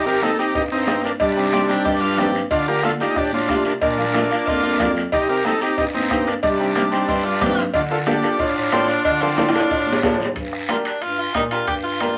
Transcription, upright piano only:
0.05 0.11 C4 medium
0.05 0.12 D#4 medium
0.05 0.12 G4 medium
0.22 0.28 C4 medium
0.22 0.28 D#4 medium
0.22 0.28 G4 medium
0.38 0.56 C4 medium
0.38 0.56 D#4 medium
0.38 0.56 G4 medium
0.88 1.05 C4 medium
0.88 1.05 D#4 medium
0.88 1.05 G4 medium
1.36 1.42 C4 medium
1.36 1.42 D#4 medium
1.36 1.43 G4 medium
1.52 1.58 C4 medium
1.52 1.59 D#4 medium
1.52 1.59 G4 medium
1.69 1.86 C4 medium
1.69 1.87 D#4 medium
1.69 1.87 G4 medium
2.18 2.35 C4 medium
2.18 2.35 D#4 medium
2.18 2.36 G4 medium
2.67 2.73 A3 medium
2.67 2.73 D4 medium
2.67 2.73 F4 medium
2.83 2.89 A3 medium
2.83 2.89 D4 medium
2.83 2.90 F4 medium
3.00 3.17 A3 medium
3.00 3.17 D4 medium
3.00 3.18 F4 medium
3.49 3.66 A3 medium
3.49 3.66 D4 medium
3.49 3.67 F4 medium
3.98 4.03 A#3 medium
3.98 4.04 D4 medium
3.98 4.04 F4 medium
4.14 4.20 A#3 medium
4.14 4.20 D4 medium
4.14 4.20 F4 medium
4.30 4.48 A#3 medium
4.30 4.48 D4 medium
4.30 4.48 F4 medium
4.80 4.97 A#3 medium
4.80 4.97 D4 medium
4.80 4.97 F4 medium
5.29 5.35 C4 medium
5.29 5.35 D#4 medium
5.29 5.35 G4 medium
5.45 5.51 C4 medium
5.45 5.51 D#4 medium
5.45 5.51 G4 medium
5.61 5.78 C4 medium
5.61 5.79 D#4 medium
5.61 5.79 G4 medium
6.10 6.27 C4 medium
6.10 6.28 D#4 medium
6.10 6.28 G4 medium
6.59 6.65 C4 medium
6.59 6.65 D#4 medium
6.59 6.65 G4 medium
6.76 6.81 C4 medium
6.76 6.82 D#4 medium
6.76 6.82 G4 medium
6.91 7.09 C4 medium
6.91 7.09 D#4 medium
6.91 7.09 G4 medium
7.41 7.58 C4 medium
7.41 7.58 D#4 medium
7.41 7.59 G4 medium
7.90 7.96 D4 medium
7.90 7.96 F4 medium
7.90 7.96 A4 medium
8.06 8.12 D4 medium
8.06 8.12 F4 medium
8.06 8.13 A4 medium
8.23 8.40 D4 medium
8.23 8.40 F4 medium
8.23 8.40 A4 medium
8.72 8.89 D4 medium
8.72 8.89 F4 medium
8.72 8.90 A4 medium
9.21 9.27 D4 medium
9.21 9.27 F4 medium
9.21 9.27 A4 medium
9.37 9.43 D4 medium
9.37 9.43 F4 medium
9.37 9.44 A4 loud
9.54 9.71 D4 medium
9.54 9.71 F4 medium
9.54 9.72 A4 medium
10.03 10.21 D4 medium
10.03 10.21 F4 medium
10.03 10.21 A4 medium
10.69 10.92 D4 medium
10.69 10.92 G4 medium
10.69 10.92 A#4 medium
11.35 11.41 D4 medium
11.35 11.41 G4 medium
11.35 11.41 A#4 medium
11.51 11.68 D4 medium
11.51 11.69 G4 medium
11.51 11.69 A#4 medium
12.00 12.18 D4 medium
12.00 12.18 G4 medium
12.00 12.18 A#4 medium

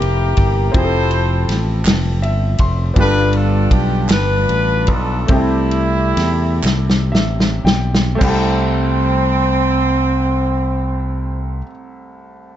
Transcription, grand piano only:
0.00 0.70 C3 medium
0.00 0.74 A#3 medium
0.00 0.70 C4 medium
0.00 0.72 E4 medium
0.00 0.75 G4 medium
0.00 0.75 A#4 medium
0.72 2.92 F3 medium
0.72 2.91 C4 medium
0.72 2.91 E4 medium
0.76 2.93 G4 medium
0.76 0.83 G#4 medium
0.84 2.97 A4 medium
2.22 2.57 E5 medium
2.60 2.94 C6 medium
2.94 4.05 G2 medium
2.94 5.24 B3 medium
2.94 5.25 D4 medium
2.94 5.26 F4 medium
2.98 5.26 G4 medium
2.98 5.27 A4 medium
5.26 6.60 C3 medium
5.26 8.14 A3 medium
5.26 8.17 C4 medium
5.26 8.17 E4 medium
5.32 8.18 G4 medium
5.32 8.19 A4 medium
7.12 7.61 E5 medium
7.65 8.17 G5 medium
8.15 11.56 A3 medium
8.15 11.59 C4 medium
8.21 11.62 C2 medium
8.21 11.62 E4 medium
8.21 11.65 G4 medium
8.28 11.68 A4 loud

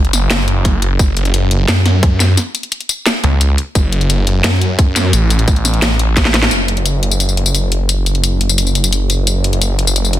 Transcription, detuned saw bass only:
0.00 0.98 F#1 loud
0.99 1.50 F#1 loud
1.51 1.67 F#1 loud
1.68 2.02 F#2 loud
2.03 2.19 F#2 loud
2.20 2.36 F#2 loud
3.24 3.57 C#2 loud
3.75 4.26 F#1 loud
4.27 4.43 F#1 loud
4.44 4.77 F#2 loud
4.79 4.95 F#2 loud
4.96 5.12 F#2 loud
5.13 6.50 A1 loud
6.51 10.20 F#1 medium

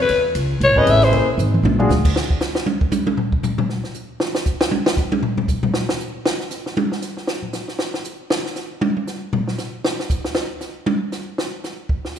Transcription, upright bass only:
0.09 0.34 E2 medium
0.35 0.60 C#2 medium
0.60 0.69 B1 medium
0.69 0.77 A1 medium
0.78 0.86 G#1 medium
0.87 1.11 A1 loud
1.12 1.37 A#1 medium
1.38 1.63 G#1 medium
1.63 1.88 A#1 loud
1.89 2.14 D2 medium

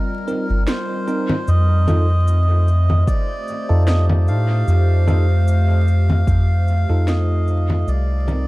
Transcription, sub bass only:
0.49 0.66 G1 medium
1.48 3.04 F2 loud
3.70 4.29 F2 loud
4.28 4.64 A2 medium
4.68 6.24 F2 loud
6.27 6.85 F2 medium
6.89 7.84 F2 medium
7.87 8.48 C2 loud

